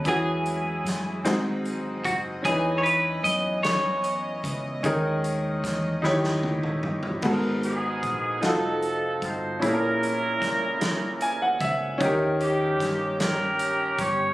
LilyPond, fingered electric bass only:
\new Staff \with { instrumentName = "Fingered electric bass" } { \clef bass \time 6/8 \key gis \minor \tempo 4. = 50 e,4 fis,8 gis,,4 fis,,8 | e,4 fis,4. cis,8 | dis,4 e,8 dis,4 g,,8 | gis,,4 ais,,8 f,,4 g,,8 |
ais,,4 cis,4. cis,8 | dis,4 g,4. g,,8 | }